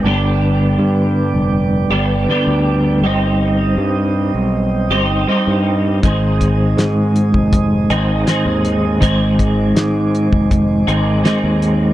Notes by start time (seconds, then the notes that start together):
Already playing: G5
0.02 G1 G2 G3 B4 D5 D6
0.06 D3 B3 D4 G4
0.79 G2
1.34 F1
1.90 G1 G2 D3 G3 B3 D4 G4
2.28 G2 D3 G3 B3 D4 G4
2.47 D2
3.02 G1 G3 C4 G4 C5 D#5 D#6
3.06 D#4
3.77 G2
4.34 B1
4.89 G1 C4 D#4 G4
4.93 G3
5.27 G3 C4 D#4 G4
5.47 G2
6.03 G#1 G#2 D#3 G#3 C4 D#4 G#4 D#5 G#5 D#6, kick, closed hi-hat
6.41 kick, closed hi-hat
6.77 G#2, snare, closed hi-hat
7.16 closed hi-hat
7.34 F1, kick
7.53 kick, closed hi-hat
7.90 G#1 G#2 D#3 G#3 C4 D#4 G#4, closed hi-hat
8.26 G#2 D#3 G#3 C4 D#4 G#4, snare, closed hi-hat
8.46 D#2
8.65 closed hi-hat
9.00 G#1 G#2 D#3 G#3 C4 D#4 G#4 D6, kick, closed hi-hat
9.39 kick, closed hi-hat
9.76 G#2, snare, closed hi-hat
10.15 closed hi-hat
10.32 F1, kick
10.51 kick, closed hi-hat
10.87 G#1 G#2 D#3 G#3 C4 D#4 G#4, closed hi-hat
11.23 G#2 D#3 G#3 C4 D#4 G#4, snare, closed hi-hat
11.44 D#2
11.62 closed hi-hat